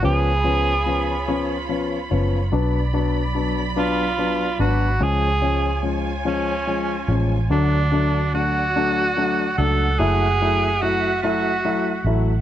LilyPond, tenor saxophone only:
\new Staff \with { instrumentName = "Tenor saxophone" } { \time 6/8 \key cis \phrygian \tempo 4. = 48 gis'2 r4 | r4. eis'4 fis'8 | gis'4 r8 cis'4 r8 | d'4 fis'4. a'8 |
gis'4 fis'8 fis'4 r8 | }